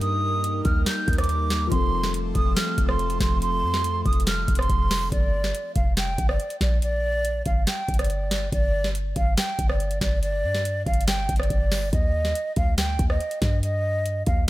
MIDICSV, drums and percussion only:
0, 0, Header, 1, 2, 480
1, 0, Start_track
1, 0, Key_signature, -2, "minor"
1, 0, Tempo, 425532
1, 15, Time_signature, 4, 2, 24, 8
1, 16354, End_track
2, 0, Start_track
2, 0, Title_t, "Drums"
2, 16, Note_on_c, 9, 42, 87
2, 129, Note_off_c, 9, 42, 0
2, 496, Note_on_c, 9, 42, 97
2, 609, Note_off_c, 9, 42, 0
2, 732, Note_on_c, 9, 42, 72
2, 735, Note_on_c, 9, 36, 107
2, 845, Note_off_c, 9, 42, 0
2, 848, Note_off_c, 9, 36, 0
2, 973, Note_on_c, 9, 42, 77
2, 975, Note_on_c, 9, 38, 109
2, 1086, Note_off_c, 9, 42, 0
2, 1088, Note_off_c, 9, 38, 0
2, 1215, Note_on_c, 9, 36, 104
2, 1216, Note_on_c, 9, 42, 56
2, 1275, Note_off_c, 9, 42, 0
2, 1275, Note_on_c, 9, 42, 69
2, 1328, Note_off_c, 9, 36, 0
2, 1336, Note_off_c, 9, 42, 0
2, 1336, Note_on_c, 9, 37, 101
2, 1336, Note_on_c, 9, 42, 83
2, 1395, Note_off_c, 9, 42, 0
2, 1395, Note_on_c, 9, 42, 95
2, 1449, Note_off_c, 9, 37, 0
2, 1456, Note_off_c, 9, 42, 0
2, 1456, Note_on_c, 9, 42, 72
2, 1569, Note_off_c, 9, 42, 0
2, 1696, Note_on_c, 9, 42, 87
2, 1697, Note_on_c, 9, 38, 98
2, 1809, Note_off_c, 9, 38, 0
2, 1809, Note_off_c, 9, 42, 0
2, 1935, Note_on_c, 9, 36, 112
2, 1936, Note_on_c, 9, 42, 88
2, 2048, Note_off_c, 9, 36, 0
2, 2049, Note_off_c, 9, 42, 0
2, 2295, Note_on_c, 9, 38, 72
2, 2408, Note_off_c, 9, 38, 0
2, 2416, Note_on_c, 9, 42, 96
2, 2529, Note_off_c, 9, 42, 0
2, 2651, Note_on_c, 9, 42, 74
2, 2655, Note_on_c, 9, 36, 105
2, 2764, Note_off_c, 9, 42, 0
2, 2768, Note_off_c, 9, 36, 0
2, 2893, Note_on_c, 9, 42, 76
2, 2895, Note_on_c, 9, 38, 113
2, 3005, Note_off_c, 9, 42, 0
2, 3007, Note_off_c, 9, 38, 0
2, 3134, Note_on_c, 9, 36, 104
2, 3135, Note_on_c, 9, 42, 99
2, 3247, Note_off_c, 9, 36, 0
2, 3248, Note_off_c, 9, 42, 0
2, 3256, Note_on_c, 9, 37, 104
2, 3369, Note_off_c, 9, 37, 0
2, 3376, Note_on_c, 9, 42, 64
2, 3489, Note_off_c, 9, 42, 0
2, 3496, Note_on_c, 9, 42, 67
2, 3608, Note_off_c, 9, 42, 0
2, 3614, Note_on_c, 9, 36, 106
2, 3615, Note_on_c, 9, 42, 78
2, 3616, Note_on_c, 9, 38, 97
2, 3727, Note_off_c, 9, 36, 0
2, 3728, Note_off_c, 9, 42, 0
2, 3729, Note_off_c, 9, 38, 0
2, 3856, Note_on_c, 9, 42, 84
2, 3969, Note_off_c, 9, 42, 0
2, 4216, Note_on_c, 9, 38, 74
2, 4328, Note_off_c, 9, 38, 0
2, 4335, Note_on_c, 9, 42, 99
2, 4448, Note_off_c, 9, 42, 0
2, 4575, Note_on_c, 9, 36, 104
2, 4575, Note_on_c, 9, 42, 45
2, 4655, Note_off_c, 9, 42, 0
2, 4655, Note_on_c, 9, 42, 61
2, 4688, Note_off_c, 9, 36, 0
2, 4736, Note_off_c, 9, 42, 0
2, 4736, Note_on_c, 9, 42, 79
2, 4813, Note_off_c, 9, 42, 0
2, 4813, Note_on_c, 9, 42, 75
2, 4815, Note_on_c, 9, 38, 112
2, 4926, Note_off_c, 9, 42, 0
2, 4928, Note_off_c, 9, 38, 0
2, 5055, Note_on_c, 9, 36, 108
2, 5055, Note_on_c, 9, 42, 93
2, 5136, Note_off_c, 9, 42, 0
2, 5136, Note_on_c, 9, 42, 73
2, 5167, Note_off_c, 9, 36, 0
2, 5176, Note_on_c, 9, 37, 102
2, 5216, Note_off_c, 9, 42, 0
2, 5216, Note_on_c, 9, 42, 54
2, 5289, Note_off_c, 9, 37, 0
2, 5296, Note_on_c, 9, 36, 93
2, 5297, Note_off_c, 9, 42, 0
2, 5297, Note_on_c, 9, 42, 75
2, 5408, Note_off_c, 9, 36, 0
2, 5409, Note_off_c, 9, 42, 0
2, 5536, Note_on_c, 9, 46, 84
2, 5537, Note_on_c, 9, 38, 99
2, 5649, Note_off_c, 9, 38, 0
2, 5649, Note_off_c, 9, 46, 0
2, 5775, Note_on_c, 9, 36, 114
2, 5776, Note_on_c, 9, 42, 83
2, 5888, Note_off_c, 9, 36, 0
2, 5889, Note_off_c, 9, 42, 0
2, 6136, Note_on_c, 9, 38, 69
2, 6249, Note_off_c, 9, 38, 0
2, 6256, Note_on_c, 9, 42, 97
2, 6369, Note_off_c, 9, 42, 0
2, 6492, Note_on_c, 9, 42, 68
2, 6495, Note_on_c, 9, 36, 103
2, 6605, Note_off_c, 9, 42, 0
2, 6608, Note_off_c, 9, 36, 0
2, 6733, Note_on_c, 9, 42, 69
2, 6735, Note_on_c, 9, 38, 109
2, 6846, Note_off_c, 9, 42, 0
2, 6848, Note_off_c, 9, 38, 0
2, 6974, Note_on_c, 9, 36, 99
2, 6975, Note_on_c, 9, 42, 93
2, 7087, Note_off_c, 9, 36, 0
2, 7088, Note_off_c, 9, 42, 0
2, 7095, Note_on_c, 9, 37, 101
2, 7208, Note_off_c, 9, 37, 0
2, 7215, Note_on_c, 9, 42, 59
2, 7328, Note_off_c, 9, 42, 0
2, 7335, Note_on_c, 9, 42, 65
2, 7448, Note_off_c, 9, 42, 0
2, 7454, Note_on_c, 9, 36, 100
2, 7455, Note_on_c, 9, 38, 94
2, 7455, Note_on_c, 9, 42, 78
2, 7566, Note_off_c, 9, 36, 0
2, 7568, Note_off_c, 9, 38, 0
2, 7568, Note_off_c, 9, 42, 0
2, 7695, Note_on_c, 9, 42, 84
2, 7808, Note_off_c, 9, 42, 0
2, 8175, Note_on_c, 9, 42, 96
2, 8287, Note_off_c, 9, 42, 0
2, 8410, Note_on_c, 9, 42, 73
2, 8414, Note_on_c, 9, 36, 101
2, 8523, Note_off_c, 9, 42, 0
2, 8527, Note_off_c, 9, 36, 0
2, 8651, Note_on_c, 9, 42, 73
2, 8653, Note_on_c, 9, 38, 107
2, 8764, Note_off_c, 9, 42, 0
2, 8766, Note_off_c, 9, 38, 0
2, 8894, Note_on_c, 9, 36, 101
2, 8894, Note_on_c, 9, 42, 56
2, 8955, Note_off_c, 9, 42, 0
2, 8955, Note_on_c, 9, 42, 66
2, 9007, Note_off_c, 9, 36, 0
2, 9015, Note_off_c, 9, 42, 0
2, 9015, Note_on_c, 9, 37, 99
2, 9015, Note_on_c, 9, 42, 76
2, 9074, Note_off_c, 9, 42, 0
2, 9074, Note_on_c, 9, 42, 91
2, 9128, Note_off_c, 9, 37, 0
2, 9135, Note_off_c, 9, 42, 0
2, 9135, Note_on_c, 9, 42, 76
2, 9248, Note_off_c, 9, 42, 0
2, 9375, Note_on_c, 9, 42, 85
2, 9376, Note_on_c, 9, 38, 97
2, 9488, Note_off_c, 9, 38, 0
2, 9488, Note_off_c, 9, 42, 0
2, 9615, Note_on_c, 9, 36, 115
2, 9616, Note_on_c, 9, 42, 84
2, 9728, Note_off_c, 9, 36, 0
2, 9729, Note_off_c, 9, 42, 0
2, 9975, Note_on_c, 9, 38, 71
2, 10088, Note_off_c, 9, 38, 0
2, 10096, Note_on_c, 9, 42, 95
2, 10208, Note_off_c, 9, 42, 0
2, 10331, Note_on_c, 9, 42, 71
2, 10335, Note_on_c, 9, 36, 104
2, 10444, Note_off_c, 9, 42, 0
2, 10448, Note_off_c, 9, 36, 0
2, 10574, Note_on_c, 9, 42, 70
2, 10576, Note_on_c, 9, 38, 109
2, 10686, Note_off_c, 9, 42, 0
2, 10688, Note_off_c, 9, 38, 0
2, 10815, Note_on_c, 9, 36, 104
2, 10815, Note_on_c, 9, 42, 98
2, 10927, Note_off_c, 9, 36, 0
2, 10928, Note_off_c, 9, 42, 0
2, 10936, Note_on_c, 9, 37, 102
2, 11049, Note_off_c, 9, 37, 0
2, 11055, Note_on_c, 9, 42, 63
2, 11168, Note_off_c, 9, 42, 0
2, 11176, Note_on_c, 9, 42, 65
2, 11288, Note_off_c, 9, 42, 0
2, 11294, Note_on_c, 9, 36, 97
2, 11295, Note_on_c, 9, 42, 78
2, 11296, Note_on_c, 9, 38, 94
2, 11407, Note_off_c, 9, 36, 0
2, 11408, Note_off_c, 9, 42, 0
2, 11409, Note_off_c, 9, 38, 0
2, 11536, Note_on_c, 9, 42, 80
2, 11649, Note_off_c, 9, 42, 0
2, 11895, Note_on_c, 9, 38, 71
2, 12008, Note_off_c, 9, 38, 0
2, 12016, Note_on_c, 9, 42, 96
2, 12129, Note_off_c, 9, 42, 0
2, 12255, Note_on_c, 9, 36, 96
2, 12256, Note_on_c, 9, 42, 45
2, 12335, Note_off_c, 9, 42, 0
2, 12335, Note_on_c, 9, 42, 61
2, 12368, Note_off_c, 9, 36, 0
2, 12415, Note_off_c, 9, 42, 0
2, 12415, Note_on_c, 9, 42, 75
2, 12493, Note_off_c, 9, 42, 0
2, 12493, Note_on_c, 9, 42, 71
2, 12495, Note_on_c, 9, 38, 113
2, 12605, Note_off_c, 9, 42, 0
2, 12607, Note_off_c, 9, 38, 0
2, 12734, Note_on_c, 9, 36, 103
2, 12735, Note_on_c, 9, 42, 89
2, 12814, Note_off_c, 9, 42, 0
2, 12814, Note_on_c, 9, 42, 71
2, 12847, Note_off_c, 9, 36, 0
2, 12854, Note_on_c, 9, 37, 99
2, 12895, Note_off_c, 9, 42, 0
2, 12895, Note_on_c, 9, 42, 53
2, 12967, Note_off_c, 9, 37, 0
2, 12975, Note_off_c, 9, 42, 0
2, 12975, Note_on_c, 9, 36, 92
2, 12975, Note_on_c, 9, 42, 72
2, 13088, Note_off_c, 9, 36, 0
2, 13088, Note_off_c, 9, 42, 0
2, 13215, Note_on_c, 9, 46, 82
2, 13216, Note_on_c, 9, 38, 92
2, 13328, Note_off_c, 9, 38, 0
2, 13328, Note_off_c, 9, 46, 0
2, 13455, Note_on_c, 9, 36, 114
2, 13456, Note_on_c, 9, 42, 82
2, 13568, Note_off_c, 9, 36, 0
2, 13568, Note_off_c, 9, 42, 0
2, 13815, Note_on_c, 9, 38, 70
2, 13928, Note_off_c, 9, 38, 0
2, 13936, Note_on_c, 9, 42, 97
2, 14048, Note_off_c, 9, 42, 0
2, 14172, Note_on_c, 9, 42, 72
2, 14175, Note_on_c, 9, 36, 99
2, 14284, Note_off_c, 9, 42, 0
2, 14288, Note_off_c, 9, 36, 0
2, 14413, Note_on_c, 9, 42, 74
2, 14415, Note_on_c, 9, 38, 108
2, 14526, Note_off_c, 9, 42, 0
2, 14528, Note_off_c, 9, 38, 0
2, 14654, Note_on_c, 9, 36, 106
2, 14655, Note_on_c, 9, 42, 93
2, 14767, Note_off_c, 9, 36, 0
2, 14768, Note_off_c, 9, 42, 0
2, 14776, Note_on_c, 9, 37, 99
2, 14888, Note_off_c, 9, 37, 0
2, 14895, Note_on_c, 9, 42, 63
2, 15008, Note_off_c, 9, 42, 0
2, 15015, Note_on_c, 9, 42, 66
2, 15128, Note_off_c, 9, 42, 0
2, 15134, Note_on_c, 9, 36, 104
2, 15135, Note_on_c, 9, 38, 93
2, 15135, Note_on_c, 9, 42, 79
2, 15247, Note_off_c, 9, 36, 0
2, 15247, Note_off_c, 9, 42, 0
2, 15248, Note_off_c, 9, 38, 0
2, 15375, Note_on_c, 9, 42, 84
2, 15488, Note_off_c, 9, 42, 0
2, 15855, Note_on_c, 9, 42, 96
2, 15968, Note_off_c, 9, 42, 0
2, 16091, Note_on_c, 9, 42, 72
2, 16095, Note_on_c, 9, 36, 101
2, 16203, Note_off_c, 9, 42, 0
2, 16207, Note_off_c, 9, 36, 0
2, 16354, End_track
0, 0, End_of_file